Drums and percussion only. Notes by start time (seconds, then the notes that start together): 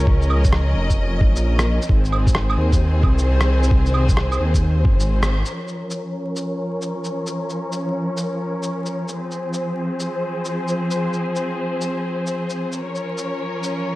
0.07 kick
0.22 shaker
0.30 claves
0.44 kick, shaker
0.53 cross-stick
0.90 kick, shaker
1.21 kick
1.36 shaker
1.59 cross-stick, shaker
1.82 shaker
1.89 kick
2.05 shaker
2.12 claves
2.27 kick, shaker
2.35 cross-stick
2.50 claves
2.72 kick, shaker
3.03 kick, claves
3.18 shaker
3.41 cross-stick, shaker
3.63 shaker
3.71 kick
3.86 shaker
3.94 claves
4.09 kick, shaker
4.17 cross-stick
4.32 claves, shaker
4.54 kick, shaker
4.85 kick
5.00 shaker
5.23 cross-stick, shaker
5.46 shaker
5.68 shaker
5.90 shaker
6.36 shaker
6.82 shaker
7.04 shaker
7.27 shaker
7.50 shaker
7.72 shaker
8.17 shaker
8.63 shaker
8.86 shaker
9.08 shaker
9.31 shaker
9.53 shaker
10.00 shaker
10.45 shaker
10.68 shaker
10.91 shaker
11.13 shaker
11.36 shaker
11.81 shaker
12.27 shaker
12.50 shaker
12.72 shaker
12.95 shaker
13.18 shaker
13.63 shaker